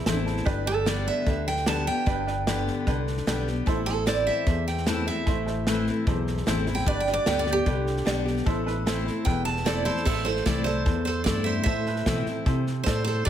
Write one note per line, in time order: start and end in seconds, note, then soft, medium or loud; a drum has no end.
0.00 0.43 E2 loud
0.00 0.25 E4 medium
0.06 0.40 A1 medium
0.06 0.45 E3 medium
0.06 0.45 A3 medium
0.06 0.46 C4 medium
0.06 0.42 E4 medium
0.06 0.46 E4 medium
0.06 0.42 A4 medium
0.06 0.43 C5 medium
0.06 0.25 E5 medium
0.06 snare loud
0.06 hi-hat pedal medium
0.26 0.45 A5 medium
0.26 snare soft
0.37 snare soft
0.45 1.08 G1 medium
0.45 1.23 G2 medium
0.45 0.64 D4 loud
0.45 0.64 G4 loud
0.45 0.64 B4 loud
0.45 kick loud
0.45 snare soft
0.66 0.84 D4 medium
0.66 0.84 G4 medium
0.66 0.86 A4 loud
0.66 0.84 B4 medium
0.66 snare soft
0.86 1.24 D3 medium
0.86 1.25 G3 medium
0.86 1.25 B3 medium
0.86 1.22 D4 medium
0.86 1.22 G4 medium
0.86 1.25 G4 medium
0.86 1.23 B4 medium
0.86 1.06 D5 medium
0.86 snare loud
0.86 hi-hat pedal medium
1.07 1.46 E5 medium
1.07 snare soft
1.27 1.89 D2 medium
1.27 1.65 D3 medium
1.27 1.63 D4 medium
1.27 1.63 G4 medium
1.27 1.63 B4 medium
1.27 kick loud
1.27 snare soft
1.47 1.67 G5 medium
1.47 snare soft
1.57 snare soft
1.66 1.86 D3 medium
1.66 1.86 G3 medium
1.66 1.86 B3 medium
1.66 2.03 D4 medium
1.66 2.03 G4 medium
1.66 1.86 G4 medium
1.66 2.03 B4 medium
1.66 1.87 A5 medium
1.66 snare loud
1.66 hi-hat pedal medium
1.86 2.07 B3 soft
1.86 2.06 G4 medium
1.86 3.04 G5 medium
1.86 snare soft
2.06 2.69 G1 medium
2.06 2.83 G2 medium
2.06 2.24 D4 loud
2.06 2.25 G4 medium
2.06 2.25 B4 loud
2.06 kick loud
2.06 snare soft
2.26 2.45 D4 medium
2.26 2.45 G4 medium
2.26 2.45 B4 medium
2.26 snare soft
2.47 2.85 D3 medium
2.47 2.85 G3 medium
2.47 2.86 B3 medium
2.47 2.83 D4 medium
2.47 2.83 G4 medium
2.47 2.86 G4 medium
2.47 2.83 B4 loud
2.47 snare loud
2.47 hi-hat pedal medium
2.67 snare soft
2.87 3.21 C2 medium
2.87 3.26 D3 medium
2.87 3.23 D4 medium
2.87 3.23 G4 medium
2.87 3.23 B4 medium
2.87 kick loud
2.87 snare soft
3.07 snare soft
3.17 snare soft
3.27 3.61 B1 medium
3.27 3.46 D3 medium
3.27 3.47 G3 medium
3.27 3.47 B3 medium
3.27 3.63 D4 medium
3.27 3.63 G4 medium
3.27 3.46 G4 medium
3.27 3.63 B4 medium
3.27 snare loud
3.27 hi-hat pedal medium
3.47 3.67 B3 soft
3.47 3.66 G4 medium
3.47 snare soft
3.66 4.29 A1 medium
3.66 4.42 A2 medium
3.66 3.85 E4 loud
3.66 3.85 A4 loud
3.66 3.85 C5 loud
3.66 kick loud
3.66 snare soft
3.86 4.05 E4 medium
3.86 4.06 A4 loud
3.86 4.05 A4 medium
3.86 4.05 C5 medium
3.86 snare soft
4.06 4.44 E3 medium
4.06 4.45 A3 medium
4.06 4.45 C4 medium
4.06 4.43 E4 medium
4.06 4.45 E4 loud
4.06 4.43 A4 medium
4.06 4.43 C5 medium
4.06 4.26 D5 medium
4.06 snare loud
4.06 hi-hat pedal medium
4.27 4.66 E5 medium
4.27 snare soft
4.46 5.23 E2 medium
4.46 5.09 E2 medium
4.46 4.83 E4 medium
4.46 4.83 A4 medium
4.46 4.83 C5 medium
4.46 kick loud
4.46 snare soft
4.67 4.87 G5 medium
4.67 snare soft
4.77 snare soft
4.86 5.06 E3 medium
4.86 5.06 A3 medium
4.86 5.07 C4 medium
4.86 5.22 E4 medium
4.86 5.06 E4 medium
4.86 5.23 A4 medium
4.86 5.23 B4 medium
4.86 5.07 A5 medium
4.86 snare loud
4.86 hi-hat pedal medium
5.07 5.27 C4 medium
5.07 5.26 E4 medium
5.07 6.24 E5 medium
5.07 snare soft
5.26 5.89 A1 medium
5.26 6.03 A2 medium
5.26 5.44 E4 loud
5.26 5.44 A4 medium
5.26 5.45 C5 loud
5.26 kick loud
5.26 snare soft
5.46 5.65 E4 medium
5.46 5.64 A4 medium
5.46 5.65 C5 medium
5.46 snare soft
5.67 5.86 E3 medium
5.67 5.87 A3 medium
5.67 5.87 C4 medium
5.67 6.03 E4 medium
5.67 5.86 E4 medium
5.67 6.03 A4 medium
5.67 6.03 B4 medium
5.67 snare loud
5.67 hi-hat pedal medium
5.87 6.07 C4 soft
5.87 6.06 E4 medium
5.87 snare soft
6.07 6.41 B1 medium
6.07 6.83 E2 medium
6.07 6.43 E4 medium
6.07 6.43 A4 medium
6.07 6.43 C5 medium
6.07 kick loud
6.07 snare soft
6.27 snare soft
6.37 snare soft
6.46 6.81 A1 medium
6.46 6.66 E3 medium
6.46 6.66 A3 medium
6.46 6.66 C4 loud
6.46 6.83 E4 medium
6.46 6.66 E4 medium
6.46 6.83 A4 medium
6.46 6.83 C5 loud
6.46 snare loud
6.46 hi-hat pedal medium
6.66 6.87 C4 soft
6.66 6.86 E4 medium
6.66 snare soft
6.75 6.87 G5 medium
6.75 snare soft
6.86 7.18 G1 loud
6.86 7.63 G2 medium
6.86 7.05 D4 loud
6.86 7.05 G4 medium
6.86 7.05 B4 loud
6.86 7.00 D5 loud
6.86 kick loud
6.86 snare soft
7.00 7.13 G5 medium
7.07 7.25 D4 medium
7.07 7.25 G4 medium
7.07 7.25 B4 medium
7.07 snare soft
7.14 7.26 D5 loud
7.26 7.61 D2 medium
7.26 7.45 D3 medium
7.26 7.46 G3 medium
7.26 7.46 B3 medium
7.26 7.62 D4 medium
7.26 7.63 G4 medium
7.26 7.45 G4 loud
7.26 7.63 B4 medium
7.26 7.40 G5 medium
7.26 snare loud
7.26 hi-hat pedal medium
7.39 7.52 D5 loud
7.46 7.67 B3 medium
7.46 7.66 G4 medium
7.46 snare soft
7.53 8.30 G4 loud
7.66 8.01 C2 medium
7.66 8.04 D3 medium
7.66 8.02 D4 medium
7.66 8.02 G4 medium
7.66 8.02 B4 medium
7.66 kick loud
7.66 snare soft
7.87 snare soft
7.97 snare soft
8.05 8.40 B1 medium
8.05 8.25 D3 medium
8.05 8.25 G3 medium
8.05 8.26 B3 medium
8.05 8.42 D4 medium
8.05 8.42 G4 medium
8.05 8.24 G4 medium
8.05 8.42 D5 loud
8.05 snare loud
8.05 hi-hat pedal medium
8.25 8.46 B3 medium
8.25 8.45 G4 medium
8.25 snare soft
8.37 snare soft
8.46 9.08 A1 loud
8.46 9.22 A2 medium
8.46 8.64 E4 loud
8.46 8.64 A4 loud
8.46 8.64 C5 loud
8.46 kick loud
8.46 snare soft
8.66 8.84 E4 medium
8.66 8.84 A4 medium
8.66 8.84 B4 loud
8.66 snare soft
8.86 9.06 E3 medium
8.86 9.06 A3 medium
8.86 9.06 C4 medium
8.86 9.22 E4 medium
8.86 9.04 E4 loud
8.86 9.22 A4 medium
8.86 9.22 C5 loud
8.86 snare loud
8.86 hi-hat pedal medium
9.06 9.26 C4 soft
9.06 9.25 E4 medium
9.06 snare soft
9.25 9.88 E1 medium
9.25 10.02 E2 loud
9.25 9.62 E4 medium
9.25 9.62 A4 medium
9.25 9.62 B4 medium
9.25 9.45 G5 medium
9.25 kick loud
9.25 snare soft
9.45 9.84 A5 loud
9.45 snare soft
9.57 snare soft
9.64 9.84 E3 medium
9.64 9.85 A3 medium
9.64 9.85 C4 medium
9.64 10.02 E4 medium
9.64 9.84 E4 medium
9.64 10.02 A4 medium
9.64 9.85 A4 medium
9.64 10.02 C5 medium
9.64 9.85 D5 medium
9.64 snare loud
9.64 hi-hat pedal medium
9.85 10.06 C4 soft
9.85 10.05 E4 medium
9.85 10.04 A4 medium
9.85 10.06 C5 medium
9.85 10.05 A5 medium
9.85 snare soft
9.96 snare soft
10.05 10.45 A1 medium
10.05 10.82 A2 medium
10.05 10.24 E4 loud
10.05 10.25 E4 medium
10.05 10.25 A4 medium
10.05 10.24 A4 medium
10.05 10.24 C5 loud
10.05 kick loud
10.05 snare soft
10.05 crash loud
10.25 10.44 E4 medium
10.25 10.44 A4 medium
10.25 10.45 A4 medium
10.25 10.44 C5 medium
10.25 snare soft
10.36 snare soft
10.46 10.85 C2 medium
10.46 10.65 E3 medium
10.46 10.65 A3 medium
10.46 10.65 C4 medium
10.46 10.82 E4 medium
10.46 10.64 E4 medium
10.46 10.82 A4 medium
10.46 10.65 A4 medium
10.46 10.82 C5 medium
10.46 10.64 D5 medium
10.46 kick medium
10.46 snare loud
10.46 hi-hat pedal medium
10.64 10.86 C4 soft
10.64 10.85 E4 medium
10.64 11.03 A4 medium
10.64 11.04 C5 medium
10.64 snare soft
10.86 11.62 E2 medium
10.86 11.25 E2 medium
10.86 11.22 E4 medium
10.86 11.22 A4 medium
10.86 11.22 C5 medium
10.86 kick loud
10.86 snare soft
11.05 11.25 A4 medium
11.05 11.24 C5 medium
11.05 snare soft
11.24 11.65 G2 medium
11.24 11.64 E3 medium
11.24 11.64 A3 medium
11.24 11.64 C4 medium
11.24 11.62 E4 medium
11.24 11.65 E4 medium
11.24 11.45 A4 medium
11.24 11.62 A4 medium
11.24 11.62 C5 medium
11.24 11.46 D5 medium
11.24 kick medium
11.24 snare loud
11.24 hi-hat pedal medium
11.44 11.65 C5 medium
11.44 11.62 E5 medium
11.44 snare soft
11.64 12.05 A2 medium
11.64 12.42 A2 medium
11.64 11.84 E4 medium
11.64 11.84 A4 medium
11.64 12.82 C5 medium
11.64 11.84 C5 loud
11.64 12.88 E5 loud
11.64 kick loud
11.64 snare soft
11.86 12.04 E4 medium
11.86 12.04 A4 medium
11.86 12.04 B4 medium
11.86 snare soft
11.96 snare soft
12.06 12.25 B2 medium
12.06 12.25 E3 medium
12.06 12.26 A3 medium
12.06 12.26 C4 medium
12.06 12.42 E4 medium
12.06 12.25 E4 medium
12.06 12.42 A4 medium
12.06 12.43 C5 medium
12.06 kick medium
12.06 snare loud
12.06 hi-hat pedal medium
12.26 12.47 C4 soft
12.26 12.45 E4 medium
12.26 muted fingered electric bass stroke soft
12.26 snare soft
12.46 12.85 C3 medium
12.46 12.84 C3 medium
12.46 12.82 E4 medium
12.46 12.82 A4 medium
12.46 12.82 C5 medium
12.46 kick loud
12.46 snare soft
12.67 snare soft
12.84 13.25 A2 medium
12.84 13.24 A2 medium
12.84 13.22 E4 medium
12.84 13.05 A4 medium
12.84 13.22 A4 medium
12.84 13.03 C5 medium
12.84 13.22 D5 medium
12.84 kick medium
12.84 snare loud
12.84 hi-hat pedal medium
13.04 13.25 A4 medium
13.04 13.24 C5 medium
13.04 snare soft
13.25 13.30 D4 medium
13.25 13.30 G4 loud
13.25 13.30 D5 loud
13.25 kick loud